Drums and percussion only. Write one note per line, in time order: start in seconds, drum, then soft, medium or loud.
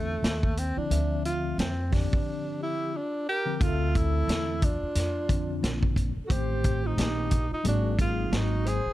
0.24 snare loud
0.24 closed hi-hat medium
0.43 kick medium
0.57 closed hi-hat medium
0.91 closed hi-hat medium
1.25 closed hi-hat medium
1.59 snare loud
1.59 closed hi-hat medium
1.92 kick medium
1.92 snare soft
1.92 open hi-hat soft
2.13 kick loud
3.61 kick loud
3.61 closed hi-hat medium
3.95 kick medium
3.95 closed hi-hat medium
4.29 snare loud
4.29 closed hi-hat medium
4.62 kick medium
4.62 closed hi-hat medium
4.95 snare soft
4.95 closed hi-hat medium
5.29 kick medium
5.29 closed hi-hat medium
5.64 snare loud
5.64 closed hi-hat medium
5.83 kick medium
5.96 kick medium
5.96 closed hi-hat medium
6.30 kick loud
6.30 closed hi-hat medium
6.64 kick medium
6.64 closed hi-hat medium
6.98 snare loud
6.98 closed hi-hat medium
7.31 kick medium
7.31 closed hi-hat medium
7.65 closed hi-hat medium
7.99 kick loud
7.99 closed hi-hat medium
8.33 snare loud
8.33 closed hi-hat medium
8.66 closed hi-hat medium